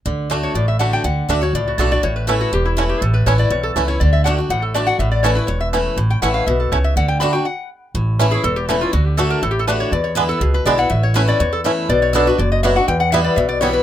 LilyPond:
<<
  \new Staff \with { instrumentName = "Resonator guitar played with a steel bar" } { \time 4/4 \key d \major \tempo 4 = 243 r4. cis''8 d''8 e''8 fis''8 g''8 | fis''4 e''8 cis''8 d''8 fis'8 a'8 d''8 | cis''8 b'8 a'8 fis'8 g'8 e'8 fis'8 g'8 | a'8 b'8 cis''8 d''8 cis''8 a'8 r8 cis''8 |
d''8 e''8 fis''8 g''8 fis''8 a'8 d''8 fis''8 | e''8 d''8 cis''8 b'8 cis''8 e''8 r4 | r8 g''8 fis''8 f''8 e''8 a'8 cis''8 e''8 | fis''8 g''8 b''8 g''8 fis''4 r4 |
r4. gis'8 a'8 g'8 fis'8 f'8 | fis'8 g'8 a'8 bes'8 \tuplet 3/2 { a'8 g'8 a'8 } b'8 cis''8 | d''8 cis''8 b'8 a'8 gis'8 b'8 d''8 fis''8 | e''8 cis''8 b'8 d''8 cis''8 a'8 r4 |
d''8 cis''8 a'8 b'8 d''8 ees''8 e''8 fis''8 | g''8 fis''8 e''8 d''8 e''8 d''8 cis''8 b'8 | }
  \new Staff \with { instrumentName = "Five-string banjo" } { \time 4/4 \key d \major r4 <a d'>8 r4. <a d'>8 r8 | r4 <a d'>8 r4. <a d'>8 r8 | r4 <a cis' e'>8 r4. <a cis' e'>8 r8 | r4 <a cis' e'>8 r4. <a cis' e'>8 r8 |
r4 <a d'>8 r4. <a d'>8 r8 | r4 <a cis' e'>8 r4. <a cis' e'>8 r8 | r4 <a cis' e'>8 r4. <a cis' e'>8 r8 | r4 <a d'>8 r2 r8 |
r4 <a cis' e'>8 r4. <a cis' e'>8 r8 | r4 <a d'>8 r4. <a d'>8 r8 | r4 <gis b d'>8 r4. <gis b d'>8 r8 | r4 <a cis' e'>8 r4. <a cis' e'>8 r8 |
r4 <b d'>8 r4. <b d'>8 r8 | r4 <g b e'>8 r4. <g b e'>8 r8 | }
  \new Staff \with { instrumentName = "Steel-string acoustic guitar" } { \time 4/4 \key d \major << { r4 <d a d' fis'>4 r4 <d a d' fis'>4 | r4 <d a d' fis'>8 <d' fis'>8 r4 <d a d' fis'>8 <d' fis'>8 | r4 <e a cis' e'>4 r4 <e a cis' e'>4 | r4 <e a cis' e'>8 <cis' e'>8 r4 <e a cis' e'>8 <cis' e'>8 |
r4 <d a d' fis'>8 <d' fis'>8 r4 <d a d' fis'>8 <d' fis'>8 | r4 <e a cis' e'>8 <cis' e'>8 r4 <e a cis' e'>4 | r4 <e a cis' e'>4 r2 | r4 <d a d' fis'>8 <d' fis'>8 r2 |
r4 <e a cis' e'>8 <cis' e'>8 r4 <e a cis' e'>8 <cis' e'>8 | r4 <d a d' fis'>4 r4 <d a d' fis'>4 | r4 <d gis b e'>8 <b e'>8 r4 <d gis b e'>8 <b e'>8 | r4 <e a cis' e'>8 <cis' e'>8 r4 <e a cis' e'>4 |
r4 <fis b d' fis'>8 <d' fis'>8 r4 <fis b d' fis'>8 <d' fis'>8 | r4 <e g b e'>4 r4 <e g b e'>4 | } \\ { d2 a,2 | d2 a,2 | a,2 e,2 | a,2 e,2 |
d2 a,2 | a,2 e,2 | a,2 b,4 cis4 | d2 r2 |
a,2 e,2 | d2 a,2 | e,2 b,2 | a,2 e,2 |
b,2 fis,2 | e,2 b,2 | } >> }
  \new Staff \with { instrumentName = "Upright bass" } { \clef bass \time 4/4 \key d \major d,2 a,,2 | d,4 d,4 cis,4 b,,4 | a,,2 e,,2 | a,,4 a,,4 b,,4 cis,4 |
d,2 a,,2 | a,,2 e,,2 | a,,4 a,,4 b,,4 cis,4 | d,2 r2 |
a,,2 e,,2 | d,2 a,,2 | e,2 cis,4 b,,4 | a,,2 e,2 |
b,,2 fis,,2 | e,2 b,,2 | }
>>